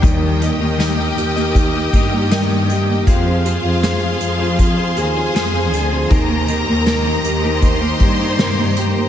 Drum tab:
HH |x-x-x-xxx-x-x-x-|x-x-x-x-x-x-x-x-|x-x-x-x-x-x-x-x-|
SD |----o-------o---|----o-------o---|----o-------o---|
BD |o-------o-o-----|o-------o-------|o-------o-o-----|